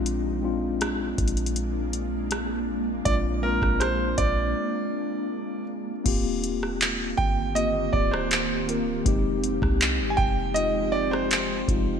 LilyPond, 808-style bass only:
\new Staff \with { instrumentName = "808-style bass" } { \clef bass \time 4/4 \key ees \major \tempo 4 = 80 bes,,4. bes,,2~ bes,,8 | bes,,8. bes,,8. bes,,8 r2 | ees,,4. g,,4 d,,4. | f,,8. c,8 aes,,16 f,,2 f,,8 | }